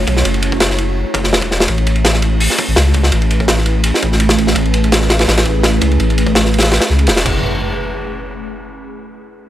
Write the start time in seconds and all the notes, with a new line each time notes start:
0.07 B1, kick, ride
0.17 snare
0.25 F#1, ride
0.34 ride
0.42 ride
0.52 kick
0.60 snare, ride
0.70 snare
0.78 ride
1.14 F#1, kick, ride
1.24 snare
1.33 E1, snare
1.42 kick, ride
1.51 snare
1.60 snare
1.68 A1, kick, ride
1.78 ride
1.87 ride
1.96 ride
2.05 snare, ride
2.13 snare
2.22 ride
2.40 open hi-hat
2.50 snare
2.58 kick, ride
2.68 A1
2.76 C#2, snare, ride
2.94 kick, ride
3.03 snare
3.12 A1, ride
3.22 ride
3.31 ride
3.40 kick
3.48 snare, ride
3.57 snare
3.66 ride
3.84 ride
3.94 snare
4.02 A1, kick, ride
4.12 snare
4.20 ride
4.29 snare
4.38 kick, ride
4.47 snare
4.55 A1, kick, ride
4.66 ride
4.74 ride
4.84 ride
4.92 snare, ride
5.01 snare
5.10 snare, ride
5.19 snare, ride
5.28 A1, snare, ride
5.38 snare, ride
5.45 kick, ride
5.63 snare, ride
5.81 C#2, kick, ride
5.92 ride
6.00 A1, ride
6.10 ride
6.18 ride
6.27 kick
6.35 snare, ride
6.45 snare
6.54 ride
6.58 snare, ride
6.62 snare, ride
6.71 snare, ride
6.81 snare, ride
6.90 C#2, snare
6.99 ride
7.07 E1, snare, ride
7.16 snare, ride
7.25 F#1, kick, crash, impact